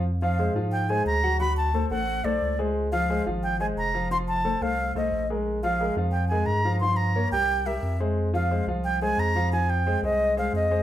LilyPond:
<<
  \new Staff \with { instrumentName = "Flute" } { \time 4/4 \key f \minor \tempo 4 = 177 r8 f''4 r8 g''8 aes''8 bes''4 | b''8 a''4 fis''4 d''4 r8 | r8 f''4 r8 g''8 aes''8 bes''4 | c'''8 a''4 f''4 ees''4 r8 |
r8 f''4 r8 g''8 aes''8 bes''4 | c'''8 bes''4 g''4 e''4 r8 | r8 f''4 r8 g''8 aes''8 bes''4 | aes''8 g''4 ees''4 f''8 ees''4 | }
  \new Staff \with { instrumentName = "Grand piano" } { \time 4/4 \key f \minor r8 <f f' f''>8 <aes aes' c''>8 <f f' f''>4 <aes aes' c''>4 <ges ges' ges''>8 | <fis fis' fis''>4 <a a' c''>8 <a a' c''>4 <a a' c''>4 <aes aes' c''>8~ | <aes aes' c''>8 <f f' f''>8 <aes aes' c''>8 <f f' f''>4 <aes aes' c''>4 <f f' f''>8 | <f f' f''>4 <a a' c''>8 <a a' c''>4 <a a' c''>4 <aes aes' bes'>8~ |
<aes aes' bes'>8 <f f' f''>8 <aes aes' bes'>8 <f f' f''>4 <aes aes' bes'>4 <f f' f''>8 | <f f' f''>4 <bes bes' des''>8 <g g' bes'>4 <g g' bes'>4 <aes aes' c''>8~ | <aes aes' c''>8 <f f' f''>8 <aes aes' c''>8 <f f' f''>4 <aes aes' c''>4 <f f' f''>8 | <f f' f''>4 <aes aes' c''>8 <aes aes' c''>4 <aes aes' c''>4 <aes aes' c''>8 | }
  \new Staff \with { instrumentName = "Sub bass" } { \clef bass \time 4/4 \key f \minor f,4. aes,4. d,4~ | d,4. a,,4 b,,8 des,4~ | des,4. aes,,4. f,,4~ | f,,4. c,4 c,8 bes,,4~ |
bes,,4. f,4. g,4~ | g,4. c,4. f,4~ | f,4. c,4. f,4~ | f,4. c,4. f,4 | }
>>